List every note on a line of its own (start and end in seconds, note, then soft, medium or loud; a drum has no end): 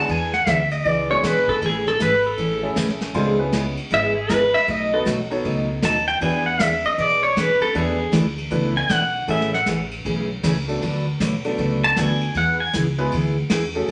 0.08 0.39 E2 loud
0.08 0.30 E3 soft
0.08 0.31 B3 medium
0.08 0.31 D4 medium
0.08 0.31 G#4 medium
0.08 0.33 G#5 medium
0.08 kick soft
0.08 ride medium
0.33 0.49 F#5 loud
0.33 snare soft
0.46 0.79 D2 medium
0.46 0.58 E3 medium
0.46 0.59 B3 medium
0.46 0.59 D4 medium
0.46 0.59 G#4 medium
0.46 0.72 E5 medium
0.46 kick soft
0.46 snare medium
0.46 hi-hat pedal medium
0.46 ride medium
0.71 0.87 D#5 medium
0.71 ride medium
0.85 1.18 C#2 medium
0.85 1.07 E3 medium
0.85 1.07 B3 medium
0.85 1.08 D4 medium
0.85 1.08 G#4 medium
0.85 1.10 D5 medium
0.85 kick soft
0.85 ride medium
1.10 1.59 G#3 medium
1.10 1.59 B3 medium
1.10 1.59 D4 medium
1.10 1.59 E4 medium
1.10 1.59 G#4 medium
1.10 1.24 C#5 medium
1.23 1.56 B1 medium
1.23 1.35 E3 medium
1.23 1.35 B3 medium
1.23 1.35 D4 medium
1.23 1.35 G#4 medium
1.23 1.49 B4 medium
1.23 kick soft
1.23 snare medium
1.23 hi-hat pedal medium
1.23 ride medium
1.48 1.62 A4 medium
1.48 kick medium
1.48 ride soft
1.61 1.92 A1 medium
1.61 1.84 C#3 medium
1.61 1.84 E3 medium
1.61 1.84 A3 medium
1.61 1.84 C#4 medium
1.61 1.84 G#4 medium
1.61 kick soft
1.61 ride medium
1.66 1.87 G#4 medium
1.87 2.00 A4 medium
1.87 snare soft
1.99 2.32 G#1 medium
1.99 2.12 C#3 medium
1.99 2.12 E3 medium
1.99 2.12 A3 medium
1.99 2.12 C#4 medium
1.99 2.12 G#4 medium
1.99 2.25 B4 medium
1.99 kick soft
1.99 snare medium
1.99 hi-hat pedal medium
1.99 ride medium
2.24 2.74 A4 medium
2.24 ride medium
2.38 2.71 A1 medium
2.38 2.60 C#3 medium
2.38 2.60 E3 medium
2.38 2.60 A3 medium
2.38 2.60 C#4 medium
2.38 2.61 G#4 medium
2.38 kick soft
2.38 ride medium
2.63 3.12 A3 medium
2.63 3.12 C#4 medium
2.63 3.12 E4 medium
2.63 3.12 G#4 medium
2.63 3.12 A4 medium
2.76 3.09 B1 medium
2.76 2.88 C#3 medium
2.76 2.88 E3 medium
2.76 2.88 A3 medium
2.76 2.88 C#4 medium
2.76 2.88 G#4 medium
2.76 kick soft
2.76 snare medium
2.76 hi-hat pedal medium
2.76 ride medium
2.89 snare soft
3.00 snare soft
3.00 ride soft
3.14 3.76 C#2 medium
3.14 3.37 C#3 medium
3.14 3.37 G#3 medium
3.14 3.37 B3 medium
3.14 3.37 C4 medium
3.14 3.37 D4 medium
3.14 3.37 E4 medium
3.14 3.37 F4 medium
3.14 3.37 G#4 medium
3.14 3.37 A4 medium
3.14 3.37 C5 medium
3.14 kick soft
3.14 ride medium
3.39 3.73 B3 medium
3.39 3.73 C#4 medium
3.39 3.73 E4 medium
3.39 3.73 G#4 medium
3.39 3.73 B4 medium
3.52 3.65 C#3 medium
3.52 3.65 G#3 medium
3.52 3.65 B3 medium
3.52 3.65 E4 medium
3.52 3.65 G#4 medium
3.52 kick soft
3.52 snare medium
3.52 hi-hat pedal medium
3.52 ride medium
3.77 ride medium
3.90 4.52 G#1 medium
3.90 4.13 C#3 medium
3.90 4.13 G#3 medium
3.90 4.14 B3 medium
3.90 4.14 E4 medium
3.90 4.14 G#4 medium
3.90 4.17 E5 medium
3.90 kick soft
3.90 ride medium
4.15 4.32 G#4 medium
4.29 4.41 C#3 medium
4.29 4.41 G#3 medium
4.29 4.41 B3 medium
4.29 4.42 E4 medium
4.29 4.42 G#4 medium
4.29 4.55 B4 medium
4.29 kick soft
4.29 snare medium
4.29 hi-hat pedal medium
4.29 ride medium
4.54 4.68 E5 loud
4.54 ride soft
4.67 4.99 B1 loud
4.67 4.89 B2 soft
4.67 4.90 F#3 medium
4.67 4.90 A3 medium
4.67 4.90 D#4 medium
4.67 4.90 F#4 medium
4.67 kick soft
4.67 ride medium
4.71 4.93 D#5 medium
4.93 5.06 B3 medium
4.93 5.05 D#4 medium
4.93 5.06 F#4 medium
4.93 5.05 A4 medium
4.93 5.02 A4 loud
4.93 5.06 B4 medium
5.05 5.39 B1 medium
5.05 5.18 B2 medium
5.05 5.18 F#3 medium
5.05 5.18 A3 medium
5.05 5.18 D#4 medium
5.05 5.18 F#4 medium
5.05 kick soft
5.05 snare medium
5.05 hi-hat pedal medium
5.05 ride medium
5.31 5.80 B3 medium
5.31 5.80 D#4 medium
5.31 5.80 F#4 medium
5.31 5.80 A4 medium
5.31 5.81 C#5 medium
5.31 ride medium
5.44 5.77 C#2 medium
5.44 5.67 B2 medium
5.44 5.67 F#3 medium
5.44 5.67 A3 medium
5.44 5.67 D#4 medium
5.44 5.67 F#4 medium
5.44 kick soft
5.44 ride medium
5.82 6.16 D#2 medium
5.82 5.94 B2 medium
5.82 5.95 F#3 medium
5.82 5.95 A3 medium
5.82 5.95 D#4 medium
5.82 5.95 F#4 medium
5.82 6.07 A5 medium
5.82 kick soft
5.82 snare medium
5.82 hi-hat pedal medium
5.82 ride medium
6.08 6.21 G5 medium
6.21 6.83 E2 medium
6.21 6.43 E3 medium
6.21 6.43 B3 medium
6.21 6.80 B3 medium
6.21 6.43 D4 medium
6.21 6.80 D4 medium
6.21 6.80 E4 medium
6.21 6.44 G#4 medium
6.21 6.80 G#4 medium
6.21 6.80 B4 medium
6.21 6.46 G#5 loud
6.21 kick soft
6.21 ride medium
6.46 6.62 F#5 loud
6.59 6.72 E3 medium
6.59 6.72 B3 medium
6.59 6.72 D4 medium
6.59 6.72 G#4 medium
6.59 6.85 E5 medium
6.59 kick soft
6.59 snare medium
6.59 hi-hat pedal medium
6.59 ride medium
6.84 6.99 D#5 medium
6.84 ride medium
6.98 7.59 B1 medium
6.98 7.20 E3 medium
6.98 7.20 B3 medium
6.98 7.20 D4 medium
6.98 7.21 G#4 medium
6.98 7.23 D5 medium
6.98 kick soft
6.98 ride medium
7.23 7.36 C#5 medium
7.36 7.48 E3 medium
7.36 7.48 B3 medium
7.36 7.48 D4 medium
7.36 7.49 G#4 medium
7.36 7.61 B4 medium
7.36 kick soft
7.36 snare medium
7.36 hi-hat pedal medium
7.36 ride medium
7.61 7.75 A4 medium
7.61 ride medium
7.75 8.06 E2 medium
7.75 7.97 E3 soft
7.75 7.97 A3 medium
7.75 7.97 B3 medium
7.75 7.97 D4 medium
7.75 7.97 E4 medium
7.75 8.14 G#4 medium
7.75 7.97 A4 medium
7.75 7.97 B4 medium
7.75 kick soft
7.75 ride medium
8.12 8.46 D2 medium
8.12 8.24 E3 medium
8.12 8.25 A3 medium
8.12 8.25 D4 medium
8.12 8.24 E4 medium
8.12 8.25 A4 medium
8.12 kick soft
8.12 snare medium
8.12 hi-hat pedal medium
8.12 ride medium
8.38 ride medium
8.50 8.84 C#2 medium
8.50 8.73 E3 medium
8.50 8.73 A3 medium
8.50 9.09 B3 medium
8.50 8.73 D4 medium
8.50 9.09 D4 medium
8.50 8.73 E4 medium
8.50 9.10 E4 medium
8.50 8.73 A4 medium
8.50 9.10 A4 medium
8.50 9.10 B4 medium
8.50 kick soft
8.50 ride medium
8.77 8.93 G#5 loud
8.89 9.22 B1 medium
8.89 9.01 E3 medium
8.89 9.01 A3 medium
8.89 9.01 D4 medium
8.89 9.02 E4 medium
8.89 9.02 A4 loud
8.89 9.30 F#5 medium
8.89 kick soft
8.89 snare medium
8.89 hi-hat pedal medium
8.89 ride medium
9.28 9.59 A1 medium
9.28 9.50 C#3 medium
9.28 9.50 E3 medium
9.28 9.50 A3 medium
9.28 9.50 C#4 medium
9.28 9.51 E4 medium
9.28 9.51 G#4 medium
9.28 9.51 A4 medium
9.28 9.53 E5 medium
9.28 kick soft
9.28 ride medium
9.41 snare soft
9.54 9.67 F#5 medium
9.54 snare soft
9.66 9.99 A1 medium
9.66 9.78 C#3 medium
9.66 9.79 E3 medium
9.66 9.79 A3 medium
9.66 9.79 C#4 medium
9.66 9.79 G#4 medium
9.66 kick soft
9.66 snare medium
9.66 hi-hat pedal medium
9.66 ride medium
9.91 ride medium
10.05 10.38 B1 medium
10.05 10.27 C#3 medium
10.05 10.27 E3 medium
10.05 10.27 A3 medium
10.05 10.27 C#4 medium
10.05 10.28 G#4 medium
10.05 kick soft
10.05 ride medium
10.43 10.76 C#2 medium
10.43 10.55 C#3 medium
10.43 10.55 E3 medium
10.43 10.55 A3 medium
10.43 10.55 C#4 medium
10.43 10.55 G#4 medium
10.43 kick soft
10.43 snare medium
10.43 hi-hat pedal medium
10.43 ride medium
10.68 10.80 A3 medium
10.68 10.81 B3 medium
10.68 10.81 D4 medium
10.68 10.81 F#4 medium
10.68 10.81 A4 medium
10.68 ride medium
10.82 11.12 D2 medium
10.82 11.04 D3 medium
10.82 11.04 F#3 medium
10.82 11.04 A3 medium
10.82 11.04 D4 medium
10.82 11.05 F#4 medium
10.82 11.05 B4 medium
10.82 kick soft
10.82 ride medium
11.20 11.53 B1 medium
11.20 11.32 D3 medium
11.20 11.32 F#3 medium
11.20 11.32 A3 medium
11.20 11.32 D4 medium
11.20 11.32 F#4 medium
11.20 11.33 B4 medium
11.20 kick soft
11.20 snare medium
11.20 hi-hat pedal medium
11.20 ride medium
11.44 11.94 A3 medium
11.44 11.94 B3 medium
11.44 11.94 D4 medium
11.44 11.95 F#4 medium
11.44 11.95 A4 medium
11.44 ride medium
11.58 11.91 C#2 medium
11.58 11.81 D3 medium
11.58 11.81 F#3 medium
11.58 11.81 A3 medium
11.58 11.81 D4 medium
11.58 11.81 F#4 medium
11.58 11.81 B4 medium
11.58 kick soft
11.58 ride medium
11.84 11.97 A5 loud
11.96 12.29 D2 medium
11.96 12.09 D3 medium
11.96 12.09 F#3 medium
11.96 12.19 A3 medium
11.96 12.09 A3 medium
11.96 12.19 B3 medium
11.96 12.19 D4 medium
11.96 12.09 D4 medium
11.96 12.19 F#4 medium
11.96 12.09 F#4 medium
11.96 12.19 A4 medium
11.96 12.09 B4 medium
11.96 12.34 G#5 medium
11.96 kick soft
11.96 snare medium
11.96 hi-hat pedal medium
11.96 ride medium
12.21 ride soft
12.34 12.66 E2 medium
12.34 12.57 E3 medium
12.34 12.58 B3 medium
12.34 12.58 E4 medium
12.34 12.58 G#4 medium
12.34 12.60 F#5 medium
12.34 kick soft
12.34 ride medium
12.60 12.74 G#5 loud
12.73 13.06 C#2 medium
12.73 12.86 E3 medium
12.73 12.86 B3 medium
12.73 12.86 E4 medium
12.73 12.86 G#4 medium
12.73 kick soft
12.73 snare medium
12.73 hi-hat pedal medium
12.73 ride medium
12.98 13.11 G#3 medium
12.98 13.11 B3 medium
12.98 13.11 E4 medium
12.98 13.11 G#4 medium
12.98 13.11 B4 medium
12.98 ride medium
13.11 13.45 D2 medium
13.11 13.35 E3 soft
13.11 13.35 B3 medium
13.11 13.35 E4 medium
13.11 13.35 G#4 medium
13.11 kick soft
13.11 ride medium
13.50 13.83 E2 medium
13.50 13.62 E3 medium
13.50 13.63 B3 medium
13.50 13.63 E4 medium
13.50 13.63 G#4 medium
13.50 kick soft
13.50 snare medium
13.50 hi-hat pedal medium
13.50 ride medium
13.74 13.91 A3 medium
13.74 13.91 C#4 medium
13.74 13.91 F#4 medium
13.74 13.91 G#4 medium
13.74 13.91 A4 medium
13.74 ride soft